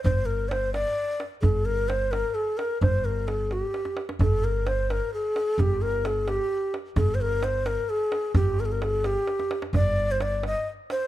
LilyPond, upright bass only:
\new Staff \with { instrumentName = "Upright bass" } { \clef bass \time 6/8 \tempo 4. = 87 g,,2 r4 | g,,2 r4 | g,,2 r4 | g,,2 r4 |
g,,2 r4 | g,,2 r4 | g,,2 r4 | g,,2 r4 | }